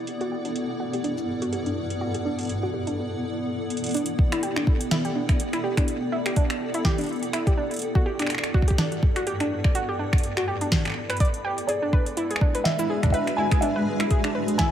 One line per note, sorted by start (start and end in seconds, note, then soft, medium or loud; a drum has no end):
0.00 12.99 B3 medium
0.00 12.45 E4 medium
0.00 11.69 A4 medium
0.00 2.98 D5 medium
0.00 13.25 D5 medium
0.00 12.35 F#5 medium
0.07 3.94 G2 medium
0.07 closed hi-hat medium
0.21 0.29 F#4 loud
0.21 closed hi-hat soft
0.32 0.42 G4 medium
0.45 0.50 D4 medium
0.45 closed hi-hat medium
0.56 closed hi-hat medium
0.80 0.90 F#4 loud
0.93 1.02 G4 medium
0.93 closed hi-hat medium
1.04 1.10 D4 medium
1.04 closed hi-hat medium
1.18 cabasa medium
1.42 1.50 F#4 loud
1.42 closed hi-hat soft
1.52 1.63 G4 medium
1.52 closed hi-hat medium
1.66 1.71 D4 medium
1.66 closed hi-hat soft
1.90 closed hi-hat medium
2.01 2.11 F#4 loud
2.14 2.23 G4 medium
2.14 closed hi-hat medium
2.25 2.31 D4 medium
2.39 closed hi-hat soft
2.41 closed hi-hat soft
2.43 closed hi-hat soft
2.45 closed hi-hat soft
2.47 closed hi-hat soft
2.49 closed hi-hat medium
2.63 2.71 F#4 medium
2.74 2.84 G4 medium
2.87 2.92 D4 medium
2.87 closed hi-hat medium
3.70 closed hi-hat medium
3.77 closed hi-hat medium
3.84 closed hi-hat medium
3.86 closed hi-hat medium
3.89 closed hi-hat soft
3.91 closed hi-hat soft
3.94 4.01 D4 medium
3.94 14.71 D5 medium
3.94 closed hi-hat medium
3.97 closed hi-hat medium
4.06 closed hi-hat medium
4.19 kick loud
4.32 4.40 E4 loud
4.32 finger snap medium
4.32 closed hi-hat medium
4.43 4.53 G4 medium
4.43 closed hi-hat medium
4.56 4.61 D4 medium
4.56 finger snap medium
4.67 kick loud
4.81 closed hi-hat medium
4.91 5.02 E4 loud
4.91 snare loud
4.91 closed hi-hat medium
5.05 5.13 G4 medium
5.05 closed hi-hat soft
5.15 5.22 D4 medium
5.29 finger snap medium
5.29 kick loud
5.29 closed hi-hat medium
5.40 closed hi-hat medium
5.53 5.61 E4 loud
5.53 finger snap soft
5.53 closed hi-hat soft
5.64 5.74 G4 medium
5.77 5.82 D4 medium
5.77 finger snap medium
5.77 kick loud
5.77 closed hi-hat medium
5.88 closed hi-hat medium
6.12 6.23 E4 loud
6.26 6.34 G4 medium
6.26 finger snap medium
6.26 closed hi-hat medium
6.36 6.43 D4 medium
6.36 kick loud
6.36 closed hi-hat medium
6.50 finger snap medium
6.50 closed hi-hat soft
6.74 6.82 E4 loud
6.74 closed hi-hat medium
6.85 6.95 G4 medium
6.85 kick loud
6.85 snare loud
6.98 7.03 D4 medium
6.98 closed hi-hat soft
7.01 closed hi-hat soft
7.04 closed hi-hat soft
7.06 closed hi-hat soft
7.09 closed hi-hat soft
7.12 closed hi-hat soft
7.16 closed hi-hat soft
7.19 closed hi-hat soft
7.23 closed hi-hat medium
7.33 7.44 E4 loud
7.33 finger snap medium
7.33 closed hi-hat medium
7.47 7.55 G4 medium
7.47 kick loud
7.47 closed hi-hat soft
7.58 7.64 D4 medium
7.71 closed hi-hat soft
7.74 closed hi-hat soft
7.76 closed hi-hat soft
7.79 11.69 G2 medium
7.79 closed hi-hat soft
7.82 closed hi-hat medium
7.95 8.03 F#4 loud
7.95 kick loud
8.06 8.16 G4 medium
8.19 8.24 D4 medium
8.19 finger snap soft
8.19 closed hi-hat medium
8.22 finger snap soft
8.27 finger snap soft
8.30 finger snap medium
8.30 closed hi-hat medium
8.35 finger snap medium
8.38 finger snap medium
8.44 finger snap medium
8.44 closed hi-hat soft
8.54 8.65 F#4 loud
8.54 kick loud
8.62 kick medium
8.68 8.76 G4 medium
8.68 kick medium
8.68 closed hi-hat medium
8.78 8.85 D4 medium
8.78 snare loud
8.78 closed hi-hat medium
8.92 closed hi-hat soft
9.03 kick loud
9.16 9.24 F#4 loud
9.16 finger snap soft
9.16 closed hi-hat medium
9.27 9.37 G4 medium
9.27 closed hi-hat medium
9.40 9.45 D4 medium
9.40 finger snap soft
9.40 closed hi-hat soft
9.64 finger snap medium
9.64 kick loud
9.75 9.86 F#4 loud
9.75 closed hi-hat medium
9.89 9.97 G4 medium
9.99 10.06 D4 medium
10.13 finger snap medium
10.13 kick loud
10.18 closed hi-hat medium
10.23 closed hi-hat medium
10.37 10.45 F#4 loud
10.37 finger snap medium
10.37 closed hi-hat soft
10.48 10.58 G4 medium
10.61 10.66 D4 medium
10.61 closed hi-hat medium
10.72 kick loud
10.72 snare loud
10.72 closed hi-hat medium
10.85 finger snap medium
10.85 closed hi-hat soft
10.88 finger snap soft
10.90 finger snap soft
10.92 finger snap soft
10.94 finger snap soft
11.10 11.18 B4 loud
11.10 finger snap soft
11.10 closed hi-hat soft
11.17 closed hi-hat soft
11.20 11.27 D5 loud
11.20 kick loud
11.20 closed hi-hat medium
11.25 closed hi-hat soft
11.34 closed hi-hat soft
11.45 11.57 G4 loud
11.58 closed hi-hat medium
11.67 14.71 G#3 loud
11.67 11.79 G#4 medium
11.67 12.68 D5 loud
11.67 closed hi-hat medium
11.79 14.71 D4 medium
11.79 11.87 D4 medium
11.84 14.71 B4 medium
11.93 14.71 F#4 medium
11.93 12.03 B4 medium
11.93 kick loud
12.06 closed hi-hat medium
12.12 14.71 G#4 medium
12.17 12.28 E4 loud
12.17 closed hi-hat medium
12.31 12.39 G#4 medium
12.31 closed hi-hat soft
12.36 finger snap medium
12.41 12.48 D4 medium
12.41 kick loud
12.55 12.63 B4 medium
12.55 closed hi-hat medium
12.64 14.71 E5 medium
12.64 13.10 E5 loud
12.64 snare loud
12.64 closed hi-hat medium
12.79 12.87 E4 loud
12.79 closed hi-hat soft
12.79 cabasa medium
12.90 13.00 G#4 medium
13.03 13.08 D4 medium
13.03 finger snap soft
13.03 kick loud
13.03 closed hi-hat soft
13.06 kick medium
13.10 13.24 B4 medium
13.10 13.36 E5 loud
13.10 kick medium
13.10 closed hi-hat medium
13.27 finger snap soft
13.27 closed hi-hat soft
13.37 13.49 E4 loud
13.37 13.62 G#5 loud
13.51 13.60 G#4 medium
13.51 finger snap medium
13.51 kick loud
13.51 closed hi-hat medium
13.61 13.69 D4 medium
13.61 14.54 E5 loud
13.61 closed hi-hat medium
13.76 13.84 B4 medium
14.00 14.08 E4 loud
14.00 finger snap medium
14.00 closed hi-hat soft
14.11 14.21 G#4 medium
14.11 kick loud
14.11 closed hi-hat medium
14.24 14.29 D4 medium
14.24 finger snap medium
14.24 closed hi-hat soft
14.35 14.45 B4 medium
14.48 closed hi-hat medium
14.58 14.69 E4 loud
14.58 14.71 G#5 loud
14.58 kick loud
14.58 snare loud
14.58 closed hi-hat medium